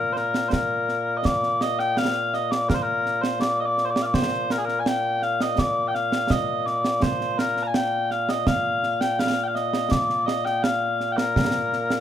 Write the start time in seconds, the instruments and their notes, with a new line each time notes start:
Already playing: bagpipes A#2 A#3 A#4
0.13 bagpipes C5, snare
0.17 bagpipes A#4
0.34 snare
0.49 bagpipes A#4 C5
0.53 concert bass drum, snare
0.89 snare
1.17 bagpipes D#5
1.25 bagpipes D5, concert bass drum, snare
1.43 snare
1.61 bagpipes D#5, snare
1.79 bagpipes G5, snare
1.97 bagpipes F5, snare
2.34 bagpipes D#5, snare
2.51 bagpipes D5, snare
2.69 bagpipes A#4, concert bass drum, snare
2.74 bagpipes C5
2.82 bagpipes A#4
3.06 snare
3.22 bagpipes C5, snare
3.40 bagpipes D5, snare
3.60 bagpipes D#5
3.66 bagpipes D5
3.78 snare
3.85 bagpipes C5
3.90 bagpipes D5
3.96 snare
4.02 bagpipes D5 F5
4.14 bagpipes C5, concert bass drum, snare
4.50 bagpipes A#4, snare
4.58 bagpipes G#4
4.65 bagpipes A#4, snare
4.80 bagpipes G#5
4.86 bagpipes G5, snare
5.22 bagpipes F5, snare
5.40 bagpipes D#5, snare
5.58 bagpipes D5, concert bass drum, snare
5.88 bagpipes G5
5.95 bagpipes F5, snare
6.12 snare
6.30 bagpipes D#5, concert bass drum, snare
6.66 bagpipes D5, snare
6.85 snare
7.02 bagpipes C5, concert bass drum, snare
7.21 snare
7.38 bagpipes A#4, snare
7.57 snare
7.63 bagpipes G#5 A#5
7.74 bagpipes G5, snare
8.11 bagpipes F5, snare
8.29 bagpipes D#5, snare
8.47 bagpipes F5, concert bass drum, snare
8.83 snare
9.01 bagpipes G5, snare
9.19 bagpipes F5, snare
9.44 bagpipes G5
9.48 bagpipes F5
9.55 bagpipes D#5, snare
9.73 snare
9.91 bagpipes D5, concert bass drum, snare
10.10 snare
10.26 bagpipes D#5, snare
10.45 bagpipes G5, snare
10.63 bagpipes F5, snare
11.00 snare
11.12 bagpipes G5
11.17 bagpipes A#4, snare
11.36 concert bass drum, snare
11.73 snare
11.90 snare